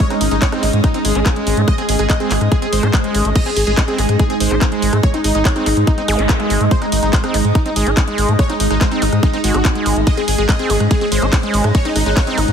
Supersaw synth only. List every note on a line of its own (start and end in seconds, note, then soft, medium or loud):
0.10 0.18 D#4 medium
0.21 0.28 D#4 medium
0.31 0.39 D#4 medium
0.42 0.49 C#5 medium
0.52 0.60 D#4 medium
0.63 0.70 D#4 medium
0.84 0.91 D#4 medium
0.94 1.02 D#4 medium
1.05 1.59 G#4 loud
1.68 1.75 D#5 loud
1.78 1.85 G#4 medium
1.89 1.96 G#4 medium
1.99 2.06 G#4 medium
2.10 2.17 D#5 medium
2.20 2.27 G#4 medium
2.31 2.38 G#4 medium
2.52 2.59 G#4 medium
2.62 2.69 G#4 medium
2.73 3.27 C5 loud
3.36 3.43 D#5 loud
3.46 3.53 G#4 medium
3.57 3.64 G#4 medium
3.67 3.74 G#4 medium
3.78 3.85 D#5 medium
3.88 3.95 G#4 medium
3.98 4.06 G#4 medium
4.19 4.27 G#4 medium
4.30 4.37 G#4 medium
4.40 4.95 C5 loud
5.03 5.11 C#5 loud
5.14 5.21 D#4 medium
5.24 5.32 D#4 medium
5.35 5.42 D#4 medium
5.45 5.53 C#5 medium
5.56 5.63 D#4 medium
5.66 5.74 D#4 medium
5.87 5.95 D#4 medium
5.98 6.05 D#4 medium
6.08 6.63 G#4 loud
6.71 6.78 C5 loud
6.82 6.89 D#4 medium
6.92 6.99 D#4 medium
7.03 7.10 D#4 medium
7.13 7.20 C5 medium
7.24 7.31 D#4 medium
7.34 7.41 D#4 medium
7.55 7.62 D#4 medium
7.66 7.73 D#4 medium
7.76 8.31 G#4 loud
8.39 8.46 C#5 loud
8.50 8.57 D#4 medium
8.60 8.67 D#4 medium
8.71 8.78 D#4 medium
8.81 8.88 C5 medium
8.91 8.99 D#4 medium
9.02 9.09 D#4 medium
9.23 9.30 D#4 medium
9.33 9.41 D#4 medium
9.44 9.99 F#4 loud
10.07 10.14 D#5 loud
10.17 10.25 G#4 medium
10.28 10.35 G#4 medium
10.38 10.46 G#4 medium
10.49 10.56 D#5 medium
10.59 10.67 G#4 medium
10.70 10.77 G#4 medium
10.91 10.98 G#4 medium
11.01 11.09 G#4 medium
11.12 11.66 C5 loud
11.75 11.82 C#5 loud
11.85 11.92 D#4 medium
11.96 12.03 D#4 medium
12.06 12.13 D#4 medium
12.17 12.24 C#5 medium
12.27 12.34 D#4 medium
12.38 12.45 D#4 medium